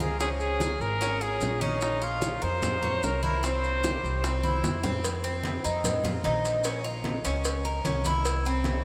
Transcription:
0.00 0.75 C#2 medium
0.00 0.20 F4 medium
0.00 0.19 G#4 medium
0.00 high bongo soft
0.00 maracas soft
0.20 0.59 C#4 medium
0.20 0.29 G#4 loud
0.20 high bongo medium
0.20 high conga soft
0.20 maracas medium
0.40 0.83 G#4 loud
0.40 high conga soft
0.40 maracas soft
0.60 1.00 G#4 medium
0.60 high bongo medium
0.60 high conga medium
0.60 maracas medium
0.80 1.37 G#1 medium
0.80 1.23 A#4 loud
0.80 high bongo soft
0.80 high conga soft
0.80 maracas soft
1.01 1.20 C#4 medium
1.01 high bongo medium
1.01 high conga soft
1.01 maracas medium
1.21 1.60 F4 medium
1.21 1.63 G#4 loud
1.21 high bongo soft
1.21 high conga soft
1.21 maracas soft
1.41 2.36 A#1 loud
1.41 high bongo soft
1.41 low bongo medium
1.41 high conga soft
1.41 maracas medium
1.61 2.00 C#4 medium
1.61 1.81 D#4 medium
1.61 high bongo soft
1.61 high conga medium
1.61 maracas soft
1.81 2.04 D#4 medium
1.81 high bongo medium
1.81 high conga soft
1.81 maracas medium
2.02 2.41 F4 medium
2.02 2.45 F4 medium
2.02 high conga soft
2.02 maracas soft
2.22 high bongo medium
2.22 high conga medium
2.22 maracas medium
2.42 2.99 F2 medium
2.42 2.81 A#4 medium
2.42 3.06 C5 loud
2.42 high bongo soft
2.42 maracas soft
2.62 high bongo medium
2.62 high conga soft
2.62 low conga medium
2.62 maracas medium
2.83 3.22 C#5 medium
2.83 high bongo soft
2.83 high conga soft
2.83 low conga medium
2.83 maracas soft
3.03 3.98 C2 medium
3.03 3.24 A#4 medium
3.03 high bongo soft
3.03 low bongo medium
3.03 high conga soft
3.03 maracas medium
3.23 3.42 E4 medium
3.23 3.43 A#4 medium
3.23 high bongo soft
3.23 high conga medium
3.23 maracas soft
3.43 3.82 C4 medium
3.43 4.61 C5 loud
3.43 high bongo medium
3.43 high conga soft
3.43 maracas medium
3.64 high conga soft
3.64 maracas soft
3.84 4.23 G4 medium
3.84 high bongo medium
3.84 high conga medium
3.84 maracas medium
4.04 4.60 C2 medium
4.04 high bongo soft
4.04 high conga soft
4.04 maracas soft
4.24 4.43 C4 medium
4.24 high bongo medium
4.24 high conga soft
4.24 maracas medium
4.43 4.83 E4 medium
4.43 high bongo soft
4.43 high conga medium
4.43 maracas soft
4.64 5.59 F2 medium
4.64 high bongo loud
4.64 high conga medium
4.64 maracas medium
4.83 5.03 C4 medium
4.83 low bongo medium
4.83 low conga medium
4.83 maracas soft
5.04 cowbell loud
5.04 high conga soft
5.04 maracas loud
5.24 5.63 C4 medium
5.24 high conga soft
5.24 maracas soft
5.44 cowbell medium
5.44 high conga medium
5.44 maracas soft
5.64 6.21 F2 medium
5.64 6.03 D#4 medium
5.64 high conga soft
5.64 maracas medium
5.84 cowbell loud
5.84 high conga soft
5.84 low conga medium
5.84 maracas medium
6.04 6.24 F4 medium
6.04 cowbell medium
6.04 high conga soft
6.04 low conga medium
6.04 maracas soft
6.24 7.19 A#1 loud
6.24 6.63 D#4 medium
6.24 cowbell medium
6.24 high conga medium
6.24 maracas soft
6.45 cowbell medium
6.45 maracas medium
6.64 6.84 C#4 medium
6.64 cowbell loud
6.64 high conga soft
6.64 maracas medium
6.84 7.24 F4 medium
6.84 high conga soft
6.84 maracas soft
7.04 cowbell medium
7.04 high conga medium
7.04 maracas soft
7.24 7.81 C#2 loud
7.24 7.64 C#4 medium
7.24 cowbell medium
7.24 high conga soft
7.24 maracas medium
7.44 cowbell loud
7.44 high conga soft
7.44 maracas medium
7.65 7.84 A#4 medium
7.65 high conga soft
7.65 maracas soft
7.85 8.80 C2 loud
7.85 8.05 C#4 medium
7.85 cowbell medium
7.85 high conga medium
7.85 maracas soft
8.05 8.44 E4 medium
8.05 cowbell medium
8.05 high conga medium
8.05 maracas medium
8.25 cowbell loud
8.25 high conga soft
8.25 maracas medium
8.45 8.84 C4 medium
8.45 high conga soft
8.45 maracas soft
8.64 cowbell medium
8.64 high conga medium
8.64 maracas soft

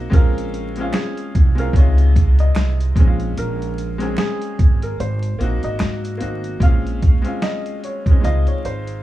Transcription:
0.00 0.14 A#3 medium
0.00 0.11 C4 medium
0.00 0.13 D#4 medium
0.00 0.13 F#4 medium
0.10 0.89 A#1 medium
0.10 0.70 G#3 medium
0.10 0.71 C4 medium
0.10 0.72 C#4 medium
0.10 0.90 A#4 medium
0.10 kick loud
0.10 closed hi-hat medium
0.14 0.72 F4 medium
0.38 closed hi-hat soft
0.54 closed hi-hat medium
0.76 1.52 G#3 medium
0.76 1.52 C4 medium
0.76 closed hi-hat soft
0.80 1.53 C#4 medium
0.80 1.54 F4 medium
0.93 1.54 G#4 medium
0.93 finger snap medium
0.93 snare loud
0.93 closed hi-hat medium
1.17 closed hi-hat soft
1.35 1.73 C2 medium
1.35 kick loud
1.35 closed hi-hat medium
1.55 1.73 G#3 medium
1.55 1.74 C4 medium
1.55 1.74 C#4 medium
1.55 1.73 A#4 medium
1.55 closed hi-hat medium
1.59 1.75 F4 medium
1.73 2.51 C#2 loud
1.73 2.90 C3 medium
1.73 2.89 G#3 medium
1.73 2.90 D#4 medium
1.73 2.35 C#5 medium
1.73 kick loud
1.73 closed hi-hat medium
1.78 2.91 F4 medium
1.98 closed hi-hat soft
2.16 kick medium
2.16 closed hi-hat medium
2.39 3.33 D#5 medium
2.39 closed hi-hat soft
2.55 2.94 C2 medium
2.55 finger snap medium
2.55 snare loud
2.55 closed hi-hat medium
2.80 closed hi-hat medium
2.96 3.34 A#1 loud
2.96 3.93 G#3 medium
2.96 3.94 C4 medium
2.96 3.94 C#4 medium
2.96 kick loud
2.96 closed hi-hat medium
3.00 3.05 D#4 medium
3.07 3.98 F4 medium
3.20 closed hi-hat soft
3.37 4.14 A#1 loud
3.37 4.14 A#4 medium
3.37 closed hi-hat medium
3.62 closed hi-hat soft
3.78 closed hi-hat medium
3.98 4.97 G#3 medium
3.98 4.98 C4 medium
3.98 4.99 C#4 medium
3.98 closed hi-hat soft
4.03 5.00 G#4 medium
4.17 4.78 G#4 medium
4.17 finger snap medium
4.17 snare loud
4.17 closed hi-hat medium
4.42 closed hi-hat soft
4.59 4.97 G#1 medium
4.59 kick loud
4.59 closed hi-hat medium
4.82 4.98 A#4 medium
4.82 closed hi-hat soft
5.00 5.37 G#1 medium
5.00 5.59 C5 medium
5.00 closed hi-hat medium
5.23 closed hi-hat soft
5.38 5.62 A#1 medium
5.38 6.15 A#3 medium
5.38 6.16 C4 medium
5.38 6.17 D#4 medium
5.38 closed hi-hat medium
5.43 6.17 F#4 medium
5.63 5.79 G#1 medium
5.63 6.00 D#5 medium
5.63 closed hi-hat soft
5.79 6.18 G#2 loud
5.79 finger snap medium
5.79 snare loud
5.79 closed hi-hat medium
6.05 closed hi-hat medium
6.17 6.59 G#1 medium
6.17 6.57 A#3 medium
6.17 6.58 C4 medium
6.17 6.58 D#4 medium
6.17 closed hi-hat medium
6.21 6.59 F#4 medium
6.44 closed hi-hat soft
6.60 7.21 A#1 medium
6.60 7.20 G#3 medium
6.60 7.20 C4 medium
6.60 7.21 C#4 medium
6.60 7.39 F5 medium
6.60 kick loud
6.60 closed hi-hat medium
6.64 7.22 F4 loud
6.86 closed hi-hat soft
7.02 kick medium
7.02 closed hi-hat medium
7.22 7.98 G#3 medium
7.22 7.99 C4 medium
7.22 8.00 C#4 medium
7.22 closed hi-hat soft
7.26 8.00 F4 medium
7.42 7.79 D#5 medium
7.42 snare loud
7.42 closed hi-hat medium
7.66 closed hi-hat soft
7.84 8.20 C#5 medium
7.84 closed hi-hat medium
8.06 8.19 G#3 medium
8.06 8.20 C4 medium
8.06 kick loud
8.06 closed hi-hat soft
8.10 8.25 C#4 medium
8.10 8.22 D#4 medium
8.20 8.45 C#2 loud
8.20 9.03 G#3 medium
8.20 9.03 C4 medium
8.20 9.03 D#4 medium
8.24 9.03 F4 loud
8.24 8.45 D#5 medium
8.24 closed hi-hat medium
8.47 8.64 C#5 medium
8.47 muted upright bass stroke medium
8.47 closed hi-hat soft
8.65 9.03 G#1 medium
8.65 9.03 C5 medium
8.65 closed hi-hat medium
8.87 closed hi-hat soft

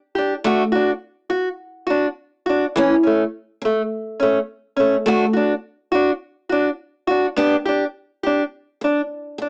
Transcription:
0.15 0.35 D4 soft
0.15 0.33 G4 medium
0.44 0.62 A3 medium
0.44 0.62 D4 medium
0.44 0.63 F#4 medium
0.72 0.92 D4 soft
0.72 0.90 F#4 medium
1.30 1.48 F#4 medium
1.87 2.07 D4 medium
1.87 2.05 F#4 medium
2.46 2.66 D4 soft
2.46 2.64 F#4 medium
2.76 2.93 E3 medium
2.76 2.94 C#4 loud
2.76 muted steel-string acoustic guitar stroke medium
3.03 3.23 A3 soft
3.03 3.22 C#4 medium
3.62 3.81 A3 medium
3.62 muted steel-string acoustic guitar stroke medium
4.20 4.39 A3 medium
4.20 4.37 C#4 medium
4.77 4.96 A3 medium
4.77 4.95 C#4 medium
5.06 5.24 A3 medium
5.06 5.24 D4 medium
5.06 5.25 F#4 loud
5.33 5.54 D4 medium
5.33 5.52 F#4 medium
5.92 6.12 D4 medium
5.92 6.10 F#4 medium
6.49 6.69 D4 medium
6.49 6.68 F#4 medium
7.07 7.27 D4 soft
7.07 7.26 F#4 medium
7.36 7.55 B3 medium
7.36 7.55 D4 medium
7.36 7.56 G4 medium
7.65 7.85 D4 soft
7.65 7.84 G4 medium
8.23 8.43 D4 soft
8.23 8.41 G4 medium
8.81 9.01 D4 medium
8.81 muted steel-string acoustic guitar stroke medium
9.38 9.49 D4 soft
9.38 muted steel-string acoustic guitar stroke medium

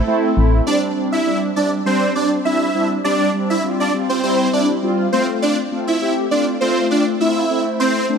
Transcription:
0.07 0.31 A3 loud
0.07 0.31 C4 loud
0.07 0.31 E4 loud
0.37 0.61 A1 medium
0.37 0.61 A3 medium
0.37 0.61 C4 medium
0.37 0.61 E4 loud
0.67 0.90 G3 medium
0.67 0.91 C4 medium
0.67 0.91 D4 loud
0.67 0.81 D4 medium
0.67 0.80 D5 loud
0.96 1.20 G3 medium
0.96 1.20 C4 medium
0.96 1.20 D4 medium
1.12 1.38 E4 medium
1.12 1.38 E5 medium
1.26 1.50 G3 medium
1.26 1.50 C4 medium
1.26 1.50 D4 medium
1.56 1.80 G3 medium
1.56 1.80 C4 medium
1.56 1.80 D4 medium
1.56 1.70 D4 medium
1.56 1.70 D5 medium
1.85 2.09 G3 loud
1.85 2.09 C4 medium
1.85 2.12 C4 medium
1.85 2.10 D4 loud
1.85 2.12 C5 medium
2.15 2.39 G3 medium
2.15 2.39 C4 medium
2.15 2.39 D4 medium
2.15 2.30 D4 medium
2.15 2.29 D5 medium
2.45 2.69 G3 medium
2.45 2.69 C4 medium
2.45 2.69 D4 medium
2.45 2.88 E4 medium
2.45 2.88 E5 medium
2.75 2.98 G3 medium
2.75 2.99 C4 medium
2.75 2.99 D4 medium
3.04 3.28 G3 loud
3.04 3.28 C4 medium
3.04 3.28 D4 loud
3.04 3.30 D4 medium
3.04 3.30 D5 loud
3.34 3.58 G3 medium
3.34 3.58 C4 medium
3.34 3.58 D4 medium
3.50 3.62 E4 medium
3.50 3.62 E5 medium
3.64 3.88 G3 medium
3.64 3.88 C4 medium
3.64 3.88 F4 medium
3.80 3.92 D4 medium
3.80 3.92 D5 medium
3.94 4.17 G3 medium
3.94 4.17 C4 medium
3.94 4.17 F4 medium
4.09 4.22 C4 medium
4.09 4.21 C5 medium
4.23 4.47 G3 loud
4.23 4.47 C4 medium
4.23 4.49 C4 medium
4.23 4.47 E4 loud
4.23 4.49 C5 medium
4.53 4.77 G3 medium
4.53 4.77 C4 medium
4.53 4.67 D4 medium
4.53 4.77 E4 medium
4.53 4.67 D5 medium
4.82 5.06 G3 medium
4.82 5.06 C4 medium
4.82 5.06 F4 loud
5.12 5.61 A3 medium
5.12 5.61 C4 medium
5.12 5.27 C4 medium
5.12 5.61 F4 medium
5.12 5.26 C5 medium
5.42 5.56 D4 medium
5.42 5.56 D5 loud
5.72 5.95 A3 medium
5.72 5.96 C4 medium
5.72 5.96 F4 medium
5.87 6.14 E4 medium
5.87 6.13 E5 medium
6.01 6.25 A3 medium
6.01 6.25 C4 medium
6.01 6.25 G4 medium
6.31 6.55 A3 medium
6.31 6.55 C4 medium
6.31 6.45 D4 medium
6.31 6.55 F4 medium
6.31 6.45 D5 medium
6.61 6.85 A3 loud
6.61 6.85 C4 medium
6.61 6.87 C4 medium
6.61 6.85 F4 loud
6.61 6.86 C5 medium
6.91 7.14 A3 medium
6.91 7.14 C4 medium
6.91 7.05 D4 medium
6.91 7.15 F4 medium
6.91 7.04 D5 medium
7.20 7.44 A3 medium
7.20 7.44 C4 medium
7.20 7.64 E4 medium
7.20 7.44 F4 medium
7.20 7.63 E5 medium
7.50 7.98 A3 medium
7.50 7.98 C4 medium
7.50 7.99 E4 medium
7.80 8.06 C4 medium
7.80 8.05 C5 loud
8.09 8.18 A3 medium
8.09 8.18 C4 medium
8.09 8.18 D4 medium

